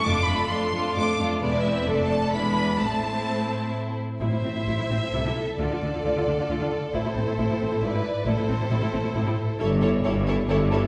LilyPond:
<<
  \new Staff \with { instrumentName = "Violin section" } { \time 3/4 \key a \minor \tempo 4 = 133 d'''8 b''8 c'''4 d'''8 r8 | d''8 e''8 d''8 a''8 b''4 | a''2 r4 | e''2. |
d''2. | c''2 d''4 | c''2. | cis''8 cis''8 cis''8 cis''8 cis''8 cis''8 | }
  \new Staff \with { instrumentName = "Violin section" } { \time 3/4 \key a \minor <f' a'>8 <f' a'>8 <f' a'>8 <f' a'>8 <f' a'>8 <f' a'>8 | <e' b'>4 a'4 <e' b'>4 | <e' c''>2~ <e' c''>8 r8 | c''2 a'4~ |
a'2.~ | a'2 b'4 | a'2. | a'8 a'8 a'8 a'8 a'8 a'8 | }
  \new Staff \with { instrumentName = "Viola section" } { \time 3/4 \key a \minor << { a8 a8 a8 a8 a8 a8 | gis4 a4 gis4 | a2~ a8 r8 | e'16 e'16 c'16 e'16 e'16 e'16 c'16 e'16 e'16 e'16 r8 |
f'16 f'16 d'16 f'16 f'16 f'16 d'16 f'16 f'16 f'16 r8 | e'16 e'16 c'16 e'16 e'16 e'16 c'16 e'16 e'16 e'16 r8 | e'16 e'16 c'16 e'16 e'16 e'16 c'16 e'16 e'16 e'16 r8 | e'8 e'8 e'8 e'8 e'8 e'8 | } \\ { d'8 d'8 d'8 d'8 d'8 d'8 | b8 c'8 d'4 d'4 | c'2~ c'8 r8 | r2. |
r2. | r2. | r2. | r2. | } >> }
  \new Staff \with { instrumentName = "Cello section" } { \clef bass \time 3/4 \key a \minor f,8 f,8 f,8 f,8 f,8 f,8 | e,4 f,4 e,4 | a,2~ a,8 r8 | a,16 a,16 a,16 a,16 a,16 a,16 a,16 a,16 c16 c16 r8 |
d16 d16 d16 d16 d16 d16 d16 d16 d16 d16 r8 | a,16 a,16 a,16 a,16 a,16 a,16 a,16 a,16 gis,16 gis,16 r8 | a,16 a,16 a,16 a,16 a,16 a,16 a,16 a,16 a,16 a,16 r8 | g,4 g,4 g,4 | }
  \new Staff \with { instrumentName = "Double bass section" } { \clef bass \time 3/4 \key a \minor f,,8 r2 r8 | e,,4 f,,4 e,,4 | a,,4 r2 | a,,16 r16 a,,16 r16 a,,16 r16 a,,16 r16 c,16 r8. |
d,16 r16 d,16 r16 d,16 r16 d,16 r16 d,16 r8. | a,,16 r16 a,,16 r16 a,,16 r16 a,,16 r16 gis,,16 r8. | a,,16 r16 a,,16 r16 a,,16 r16 a,,16 r16 a,,16 r8. | g,,4 g,,4 g,,4 | }
>>